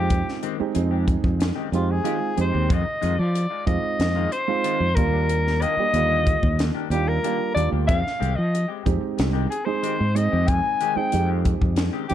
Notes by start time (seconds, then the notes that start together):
Already playing: F2 G#3 C4 D#4 F4 G4
0.10 kick, closed hi-hat
0.26 muted clean electric guitar stroke, snare
0.43 D#3 G#3 C4 G4, closed hi-hat
0.59 G#3 C4 D#4 G4, muted clean electric guitar stroke, muted fretless electric bass stroke
0.75 F2 G#3 C4 D#4 G#4, closed hi-hat
0.91 G#3 C4 G4
1.07 muted clean electric guitar stroke, kick, closed hi-hat
1.24 F2, muted clean electric guitar stroke, kick
1.39 muted clean electric guitar stroke, snare, closed hi-hat
1.55 D#3 G#3 C4 G4
1.72 F2 G#3 C4 D#4 F4 G4, muted clean electric guitar stroke, closed hi-hat
1.91 G#4
2.03 D#3 G#3 C4 D#4 F4 G4, closed hi-hat
2.20 muted clean electric guitar stroke
2.36 F2 G#3 C4 D#4 G4, muted clean electric guitar stroke, closed hi-hat
2.41 C5
2.52 D#2 G#3 C4 G4
2.69 F2 D#3 G#3 D#4 F4, kick, closed hi-hat
2.73 D#5
2.85 muted clean electric guitar stroke
3.01 F2 D#3 G#3 D#4 F4, closed hi-hat
3.19 F3 D5, muted clean electric guitar stroke
3.35 closed hi-hat
3.50 G#3 D#4 F4
3.66 F2 G#3 C4 D#4 F4 D#5, muted clean electric guitar stroke, kick, closed hi-hat
3.83 muted clean electric guitar stroke, muted fretless electric bass stroke
3.99 F2, muted clean electric guitar stroke, snare, closed hi-hat
4.15 D#3 G#3 D#4 F4
4.32 C5, muted clean electric guitar stroke, closed hi-hat
4.48 G#3 C4 D#4 F4
4.64 D#3 G#3 D#4 F4, closed hi-hat
4.80 F2, muted clean electric guitar stroke
4.95 D#2 G3 A#3 D4 F4 A#4, muted clean electric guitar stroke, kick, closed hi-hat
5.13 A#3 D4 G4
5.29 closed hi-hat
5.45 muted clean electric guitar stroke, snare
5.61 D#3 A#3 D4 G4 D#5, closed hi-hat
5.77 G3 A#3 D4 G4, muted fretless electric bass stroke, muted clean electric guitar stroke
5.93 D#2 D3 G3 A#3 F4, closed hi-hat
6.10 A#3 D4 G4
6.26 muted clean electric guitar stroke, kick, closed hi-hat
6.43 D#2, muted clean electric guitar stroke, kick
6.59 muted clean electric guitar stroke, snare, closed hi-hat
6.75 D#3 A#3 D4 G4
6.90 D#2 G3 A#3 D4 F4 G4, muted clean electric guitar stroke, closed hi-hat
7.08 A#4
7.23 D#3 G3 A#3 D4 F4 G4, closed hi-hat
7.39 muted clean electric guitar stroke
7.55 D#2 G3 A#3 D4 F4 D5, muted clean electric guitar stroke, closed hi-hat
7.72 D2 A#3 D4 G4
7.87 F2 D#3 G#3 C4 G4 F5, kick, closed hi-hat
8.03 muted clean electric guitar stroke, snare
8.20 C2 D#3 G#3 C4 G4, closed hi-hat
8.36 F3 D#5, muted clean electric guitar stroke
8.55 closed hi-hat
8.68 G#3 C4 G4
8.85 F2 G#3 C4 D#4 G4, muted clean electric guitar stroke, kick, closed hi-hat
9.01 muted clean electric guitar stroke, muted fretless electric bass stroke
9.17 C2, muted clean electric guitar stroke, snare, closed hi-hat
9.33 D#3 G#3 C4 G4
9.50 G#4, closed hi-hat
9.65 G#3 C4 D#4 G#4 C5
9.82 D#3 G#3 C4 G4, closed hi-hat
9.99 G#2, muted clean electric guitar stroke
10.15 G#3 C4 D#4 G#4 D#5, muted clean electric guitar stroke, closed hi-hat
10.32 F2 G#3 C4 G4
10.48 G#5, kick, closed hi-hat
10.64 muted clean electric guitar stroke
10.81 D#3 G#3 C4 G4, closed hi-hat
10.96 G#3 C4 D#4 G#4 G5, muted fretless electric bass stroke, muted clean electric guitar stroke
11.12 F2 G#3 C4 D#4 G4, closed hi-hat
11.28 G#3 C4 G4
11.44 muted clean electric guitar stroke, kick, closed hi-hat
11.61 F2, muted clean electric guitar stroke, kick
11.76 muted clean electric guitar stroke, snare, closed hi-hat
11.93 D#3 G#3 C4 G4
12.09 F2 G#3 C4 D#4 G4, closed hi-hat